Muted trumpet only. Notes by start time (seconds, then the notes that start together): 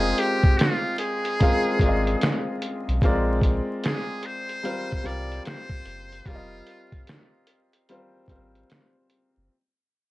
Already playing: G#4
0.19 G4
0.58 F4
1.00 G#4
3.85 G#4
4.26 C5
5.06 D5
5.46 C5
6.27 F4